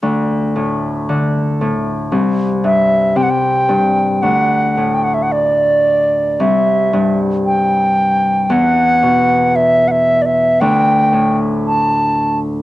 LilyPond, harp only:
\new Staff \with { instrumentName = "Harp" } { \clef bass \time 4/4 \key d \mixolydian \tempo 4 = 57 d,8 a,8 d8 a,8 c,8 g,8 c8 g,8 | d,8 a,4. c,8 g,4. | e,8 b,4. d,8 a,4. | }